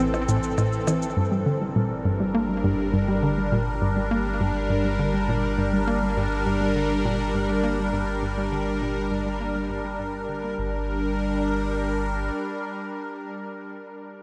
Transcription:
Already playing: sub bass A1, ambient pad E3 C4 A4
0.00 analog synth bass C4
0.14 cabasa, percussion blips
0.28 analog synth bass A2, cabasa
0.43 cabasa
0.58 analog synth bass A2, cabasa, percussion blips
0.73 cabasa
0.87 analog synth bass E3, cabasa, percussion blips
1.02 cabasa
1.17 sub bass G1, analog synth bass G2, ambient pad G3 D4 A#4, synth arpeggio sound G3
1.32 synth arpeggio sound G3
1.46 analog synth bass D3
1.61 synth arpeggio sound G3
1.76 analog synth bass A#2, synth arpeggio sound G3
2.05 analog synth bass G2, synth arpeggio sound G3
2.20 synth arpeggio sound G3
2.35 analog synth bass A#3
2.49 synth arpeggio sound G3
2.64 analog synth bass G2, synth arpeggio sound G3
2.93 analog synth bass G2, synth arpeggio sound G3
3.08 synth arpeggio sound G3
3.23 analog synth bass D3
3.38 synth arpeggio sound G3
3.52 analog synth bass A#2, synth arpeggio sound G3
3.82 analog synth bass G2, synth arpeggio sound G3
3.96 synth arpeggio sound G3
4.11 analog synth bass A#3
4.26 synth arpeggio sound G3
4.40 analog synth bass G2, synth arpeggio sound G3
4.70 analog synth bass G2, synth arpeggio sound G3
4.85 synth arpeggio sound G3
4.99 analog synth bass D3
5.14 synth arpeggio sound G3
5.29 analog synth bass A#2, synth arpeggio sound G3
5.58 analog synth bass G2, synth arpeggio sound G3
5.73 synth arpeggio sound G3
5.87 analog synth bass A#3
6.02 synth arpeggio sound G3
6.17 analog synth bass G2, synth arpeggio sound G3
6.46 analog synth bass G2, synth arpeggio sound G3
6.61 synth arpeggio sound G3
6.76 analog synth bass D3
6.91 synth arpeggio sound G3
7.05 analog synth bass A#2, synth arpeggio sound G3
7.34 analog synth bass G2, synth arpeggio sound G3
7.49 synth arpeggio sound G3
7.63 analog synth bass A#3
7.79 synth arpeggio sound G3
7.93 analog synth bass G2, synth arpeggio sound G3
8.22 analog synth bass G2, synth arpeggio sound G3
8.38 synth arpeggio sound G3
8.52 analog synth bass D3
8.67 synth arpeggio sound G3
8.81 analog synth bass A#2, synth arpeggio sound G3
9.11 analog synth bass G2, synth arpeggio sound G3
9.26 synth arpeggio sound G3
9.40 analog synth bass A#3
9.55 synth arpeggio sound G3
9.70 analog synth bass G2, synth arpeggio sound D4
9.85 synth arpeggio sound G3
9.99 analog synth bass G2, synth arpeggio sound G3
10.29 analog synth bass D3, synth arpeggio sound D4
10.43 synth arpeggio sound A#3
10.58 sub bass G1, analog synth bass G2, ambient pad G3 D4 A#4, synth arpeggio sound G3

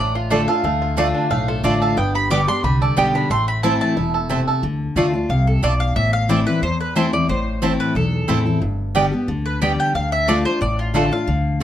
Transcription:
Already playing: upright bass A1, steel-string acoustic guitar A2, five-string banjo A3 D4
0.00 mandolin D5
0.15 five-string banjo F4, mandolin F4
0.30 steel-string acoustic guitar D3 A3 D4 F4, mandolin A3 F4 A4 D5 A5, five-string banjo A3
0.48 steel-string acoustic guitar D4 F4, five-string banjo A4, mandolin F5
0.64 upright bass D2, steel-string acoustic guitar D3, five-string banjo A3
0.82 five-string banjo F4
0.97 steel-string acoustic guitar D3 A3 D4 F4, mandolin A3 F4 D5 A5, five-string banjo A3
1.15 five-string banjo D4
1.30 upright bass B1, steel-string acoustic guitar A2, five-string banjo A3, mandolin F5
1.48 five-string banjo F4, mandolin A4
1.64 upright bass A1, steel-string acoustic guitar D3 A3 D4 F4, mandolin A3 F4 D5 A5, five-string banjo A3
1.82 five-string banjo A4, mandolin F5
1.97 upright bass G1, steel-string acoustic guitar G2, five-string banjo B3, mandolin G5
2.15 five-string banjo G4, mandolin B5
2.30 steel-string acoustic guitar D3 G3 B3 G4, mandolin B3 G4 D5 G5 D6, five-string banjo B3
2.48 steel-string acoustic guitar B3 G4, five-string banjo D4, mandolin C6
2.63 upright bass C2, steel-string acoustic guitar D3, five-string banjo G4, mandolin B5
2.82 five-string banjo A4, mandolin D5
2.97 upright bass B1, steel-string acoustic guitar D3 G3 B3 G4, mandolin B3 G4 D5 G5, five-string banjo B3
3.15 five-string banjo D4, mandolin B5
3.30 upright bass A1, steel-string acoustic guitar A2, five-string banjo A3, mandolin C6
3.48 mandolin B5
3.63 steel-string acoustic guitar E3 A3 C4 E4, mandolin C4 E4 C5 A5, five-string banjo E4
3.81 five-string banjo A3, mandolin A5
3.97 upright bass E1, steel-string acoustic guitar B2, five-string banjo E4
4.14 five-string banjo A4
4.29 steel-string acoustic guitar C3, five-string banjo A3, mandolin C4 E4 C5 A5
4.48 five-string banjo A4
4.63 upright bass D2, steel-string acoustic guitar D3
4.96 upright bass D2, steel-string acoustic guitar D3 A3 D4 F4, mandolin A3 F4 D5 A5
5.13 steel-string acoustic guitar D4 F4
5.29 upright bass C2, steel-string acoustic guitar C3, mandolin F5
5.47 mandolin A4
5.63 upright bass B1, steel-string acoustic guitar B2, mandolin A3 F4 D5 A5
5.80 mandolin F5
5.96 upright bass A1, steel-string acoustic guitar A2, mandolin E5
6.13 mandolin F5
6.29 steel-string acoustic guitar E3 A3 C4 E4, mandolin C4 E4 C5 D5 A5
6.46 steel-string acoustic guitar C4 E4, mandolin B4
6.62 upright bass E2, steel-string acoustic guitar E2, mandolin C5
6.80 mandolin B4
6.96 steel-string acoustic guitar E3 A3 C4 E4, mandolin C4 E4 C5 A5
7.13 steel-string acoustic guitar C4 E4, mandolin D5
7.29 upright bass A1, steel-string acoustic guitar A2, mandolin C5
7.62 steel-string acoustic guitar E3 A3 C4 E4, mandolin C4 E4 C5 A5
7.80 mandolin B4
7.95 upright bass B1, steel-string acoustic guitar E2, mandolin A4
8.28 upright bass A1, steel-string acoustic guitar E3 A3 C4 E4, mandolin C4 E4 C5 A5
8.45 steel-string acoustic guitar C4 E4
8.61 upright bass G1, steel-string acoustic guitar G2
8.95 steel-string acoustic guitar D3 G3 B3 G4, mandolin B3 G4 D5 G5
9.12 steel-string acoustic guitar B3 G4
9.28 upright bass D2, steel-string acoustic guitar D3
9.46 mandolin B4
9.61 steel-string acoustic guitar D3 G3 B3 G4, mandolin B3 G4 D5 G5
9.80 mandolin G5
9.95 upright bass D2, steel-string acoustic guitar D3, mandolin F5
10.12 mandolin E5
10.28 steel-string acoustic guitar D3 A3 D4 F4, mandolin A3 F4 D5 A5, five-string banjo A3 D4 F4
10.45 steel-string acoustic guitar D4 F4, mandolin C5
10.61 upright bass A1, steel-string acoustic guitar A2, mandolin D5
10.79 mandolin F4
10.94 steel-string acoustic guitar D3 A3 D4 F4, mandolin A3 F4 A4 D5 A5, five-string banjo A3 D4 F4
11.11 steel-string acoustic guitar D4 F4, mandolin F5
11.27 upright bass D2, steel-string acoustic guitar D3

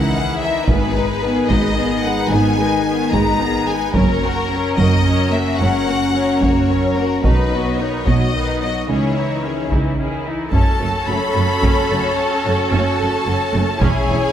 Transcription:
Already playing: double bass section C#2, cello section C#3, french horn section D#3 E3, viola section E3 E4, violin section D#4 E4 F#5
0.14 viola section D#3 C#4, violin section E4 G#4
0.39 viola section E3 E4, violin section E5
0.44 violin section D#4 E4
0.65 timpani G#2, cello section G#2, french horn section D#3 D#4, viola section D#3 B3, violin section B4, taiko
0.69 double bass section G#1, violin section B3 G#4
0.94 viola section G#3, violin section D#4 B4
1.23 viola section D#3 B3, violin section B3 G#4
1.48 double bass section G#1, cello section G#2, viola section G#3, violin section D#4 B4 D#5, taiko
1.77 viola section D#3 B3, violin section B3 G#4
2.02 viola section G#3, violin section D#4 B4 F#5
2.29 double bass section G#1, cello section G#2, viola section D#3 B3, violin section B3 G#4 G#5
2.58 viola section G#3, violin section D#4 B4
2.85 viola section D#3 B3, violin section B3 G#4
3.12 double bass section G#1, cello section G#2, viola section G#3, violin section D#4 B4 A#5, taiko
3.39 viola section D#3 B3, violin section B3 G#4
3.66 viola section G#3, violin section G#5
3.70 violin section D#4 B4
3.94 double bass section F#1, cello section F#2, viola section F#3 C#4, french horn section F#3 C#4, violin section A#4 C#5, taiko
4.23 viola section A#3, violin section F#4 A#4
4.51 viola section F#3 C#4, violin section A#4 C#5
4.76 double bass section F#1, cello section F#2, viola section A#3, violin section F#4 D#5, taiko
4.80 violin section A#4
5.04 viola section F#3 C#4, violin section A#4 C#5
5.31 viola section A#3, violin section F#4 A#4 E5
5.59 double bass section F#1, cello section F#2, viola section F#3 C#4, violin section A#4 C#5 F#5
5.87 viola section A#3, violin section F#4 A#4
6.14 viola section F#3 C#4, violin section A#4 C#5
6.41 double bass section F#1, cello section F#2, viola section A#3, violin section F#4 A#4 C#5, taiko
6.71 viola section F#3 C#4, violin section A#4 C#5
6.95 viola section A#3, violin section F#4 A#4
7.23 double bass section B1, cello section B2, viola section D#3 D#4, french horn section D#4, violin section D#4 B4, taiko
7.52 viola section F#3 B3, violin section F#4 D#5
7.78 viola section D#3 D#4, violin section D#4 B4 C#5
8.06 double bass section B1, cello section B2, viola section F#3 B3, violin section F#4 D#5, taiko
8.35 viola section D#3 D#4, violin section D#4 B4
8.62 viola section F#3 B3, violin section F#4 D#5
8.88 double bass section C#2, cello section C#3, viola section D#3 C#4, french horn section E3, violin section E4 G#4 C#5
9.16 viola section E3 E4, violin section D#4 E4
9.43 viola section D#3 C#4, violin section E4 G#4
9.70 double bass section C#2, cello section C#3, viola section E3 E4, violin section D#4 E4, taiko
9.98 viola section D#3 C#4, violin section E4 G#4
10.25 viola section E3 E4, violin section D#4 E4
10.52 double bass section F#1, cello section F#2, string section C#4 F#4 A4 C#5, viola section C#4 A4, violin section A4 A5, taiko
10.79 double bass section F#1, cello section F#2, viola section A3
11.07 double bass section F#1, cello section F#2, viola section F#3, french horn section A3 C#4, violin section B5
11.35 double bass section F#1, cello section F#2, viola section A3
11.62 double bass section F#1, cello section F#2, viola section C#4, taiko
11.89 double bass section F#1, cello section F#2, french horn section A3 C#4, viola section A3
12.17 violin section A5
12.45 double bass section F#1, cello section F#2, viola section A3
12.72 double bass section F#1, cello section F#2, french horn section A3 C#4, viola section C#4, violin section A5
12.98 double bass section F#1, cello section F#2, viola section A3
13.26 double bass section F#1, cello section F#2, viola section F#3
13.53 double bass section F#1, cello section F#2, viola section A3, french horn section A3 C#4
13.78 double bass section E1, cello section E2, viola section C#4 E4, string section C#4 E4 G#4 C#5, violin section G#4 C#5 G#5, taiko
14.07 double bass section E1, cello section E2, viola section G#3

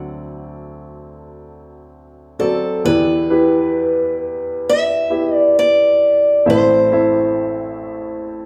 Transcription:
Already playing: upright piano D2 D3 F#3 C4 A4 D5, steel-string acoustic guitar F#5
2.39 upright piano F#3 C4 A4 D5, steel-string acoustic guitar A4
2.84 upright piano E2 E3 B3 E4 G4 D5, steel-string acoustic guitar B4
3.30 upright piano B3 E4 G4 B4
4.69 steel-string acoustic guitar E5
5.10 upright piano B3 E4 G4 E5
5.34 steel-string acoustic guitar D5
5.59 steel-string acoustic guitar D5
6.46 upright piano A1 A2 C4 E4 A4 E5
6.50 steel-string acoustic guitar C5
6.91 upright piano C4 E4 A4 E5

